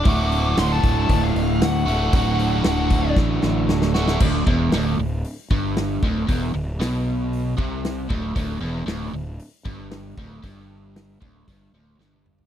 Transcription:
<<
  \new Staff \with { instrumentName = "Lead electric guitar" } { \time 4/4 \key d \mixolydian \tempo 4 = 116 d'''4 c'''16 a''8 a''8 f''8. fis''4~ | fis''2 r2 | r1 | r1 |
r1 | r1 | }
  \new Staff \with { instrumentName = "Overdriven electric guitar" } { \clef bass \time 4/4 \key d \mixolydian <d, a, d a fis'>2.~ <d, a, d a fis'>8 <d, a, d a fis'>8 | <d, a, d a fis'>2.~ <d, a, d a fis'>8 <d, a, d a fis'>8 | d,8 e,8 d,8 d,8 r8 g,4 d,8 | e,8 d,8 b,4. c4 d,8 |
d,8 e,8 d,8 d,8 r8 g,4 d,8 | g,4. d,8 g,8 d,8 g,4 | }
  \new Staff \with { instrumentName = "Fingered electric bass" } { \clef bass \time 4/4 \key d \mixolydian d,,4 d,,8 d,,8 d,,8 d,,8 d,8 d,,8 | d,,4 d,,4 a,,8 a,,8 d,,4 | d,,8 e,,8 d,,8 d,,8 r8 g,,4 d,,8 | e,,8 d,,8 b,,4. c,4 d,,8 |
d,,8 e,,8 d,,8 d,,8 r8 g,,4 d,,8 | g,,4. d,,8 g,,8 d,,8 g,,4 | }
  \new DrumStaff \with { instrumentName = "Drums" } \drummode { \time 4/4 <hho bd>8 hho8 <hho sn>8 <hho bd>8 <hho bd>8 hho8 <hho sn>8 hho8 | <hho bd>8 hho8 <hho sn>8 <hho bd>8 <bd sn>8 sn8 sn16 sn16 sn16 sn16 | <cymc bd>8 bd8 <hho sn>4 hho8 bd8 <hho sn>8 bd8 | <hho bd>4 <hho sn>4 hho8 bd8 <hho sn>8 bd8 |
<hho bd>4 <hho sn>4 hho8 bd8 <hho sn>8 bd8 | <hho bd>4 <hho sn>8 bd8 <hho bd>4 sn16 tommh16 toml16 tomfh16 | }
>>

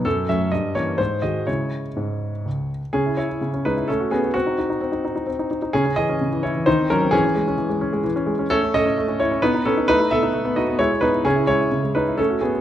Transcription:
\new Staff \with { instrumentName = "Grand piano" } { \time 3/4 \key cis \minor \tempo 4 = 130 << { a'8 e''8 dis''8 des''8 bis'8 dis''8 | cis''2~ cis''8 r8 | <cis' gis'>8 <e' cis''>4 <dis' b'>8 <cis' a'>8 <b gis'>8 | <c' ges'>2. |
<cis' gis'>8 <gis' dis''>4 <e' cis''>8 <ees' c''>8 <cis' ais'>8 | <cis' gis'>2. | <cis' a'>8 <a' dis''>4 <e' cis''>8 <dis' b'>8 <cis' a'>8 | <dis' b'>8 <a' e''>4 <fis' dis''>8 <e' cis''>8 <dis' b'>8 |
<cis' gis'>8 <e' cis''>4 <dis' b'>8 <cis' a'>8 <b gis'>8 | } \\ { fis,8 <fis a cis'>8 g,8 <e bes des'>8 gis,8 <dis gis fis'>8 | <cis gis e'>4 gis,4 cis,4 | cis16 e'16 cis'16 e'16 cis16 cis'16 gis16 e'16 a16 fis'16 cis'16 fis'16 | r16 ees'16 ees'16 ees'16 c'16 ees'16 ees'16 ees'16 c'16 ees'16 ees'16 ees'16 |
cis16 cis'16 e16 cis'16 cis16 e16 cis'16 e16 ees16 c'16 ges16 c'16 | e16 cis'16 gis16 cis'16 e16 gis16 cis'16 gis16 e16 cis'16 gis16 cis'16 | a16 cis'16 cis'16 cis'16 a16 cis'16 cis'16 cis'16 b16 dis'16 b16 dis'16 | a16 dis'16 b16 dis'16 a16 b16 dis'16 b16 gis16 e'16 b16 e'16 |
cis16 e'16 gis16 e'16 cis16 gis16 cis'16 e'16 a16 fis'16 cis'16 fis'16 | } >> }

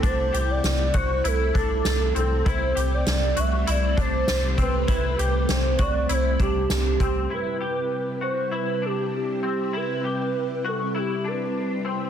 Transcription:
<<
  \new Staff \with { instrumentName = "Soft synth lead" } { \time 4/4 \key c \lydian \tempo 4 = 99 c''8. d''16 d''8 c''8 a'8 a'4 a'8 | c''8. d''16 d''8 e''8 d''8 c''4 b'8~ | b'4 c''8 d''8 c''8 g'8 g'4 | b'4. c''8 b'8 g'8 g'4 |
b'4. a'8 g'8 b'4 r8 | }
  \new Staff \with { instrumentName = "Clean electric guitar" } { \time 4/4 \key c \lydian d'8 g'4 fis'8 e'8 d'4 c'8 | e'8 g'4 fis'8 e'8 d'4 c'8 | e'8 g'4 fis'8 e'8 d'4 c'8 | e'8 g'4 fis'8 e'8 d'4 c'8 |
e'8 g'4 fis'8 e'8 d'4 c'8 | }
  \new Staff \with { instrumentName = "String machine" } { \time 4/4 \key c \lydian <c a e' fis''>1 | <c g a c'>1~ | <c g a c'>1 | <c g c' e'>1~ |
<c g c' e'>1 | }
  \new Staff \with { instrumentName = "Analog synth bass" } { \clef bass \time 4/4 \key c \lydian c,8 c,8 c,8 c,8 c,8 c,8 c,8 c,8 | c,8 c,8 c,8 c,8 c,8 c,8 c,8 c,8 | c,8 c,8 c,8 c,8 c,8 c,8 c,8 c,8 | r1 |
r1 | }
  \new DrumStaff \with { instrumentName = "Drums" } \drummode { \time 4/4 <hh bd>8 hh8 <hh sn tamb>8 <hh bd>8 hh8 <hh bd>8 <hh sn tamb>8 hh8 | <hh bd>8 hh8 <hh sn tamb>8 hh8 hh8 <hh bd>8 <hh sn tamb>8 <hh bd>8 | <hh bd>8 hh8 <hh sn tamb>8 <hh bd>8 hh8 <hh bd>8 <hh sn tamb>8 <hh bd>8 | r4 r4 r4 r4 |
r4 r4 r4 r4 | }
>>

